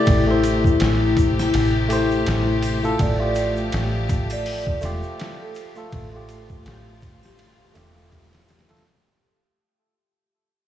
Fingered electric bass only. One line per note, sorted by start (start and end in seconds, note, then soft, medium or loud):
0.07 0.78 A1 loud
0.81 1.51 A1 loud
1.55 2.24 A1 medium
2.27 2.97 A1 loud
3.00 3.70 A1 loud
3.74 4.80 A1 loud
4.83 5.01 E1 loud
5.93 6.63 A1 loud
6.65 7.77 A1 loud
7.76 8.82 E1 medium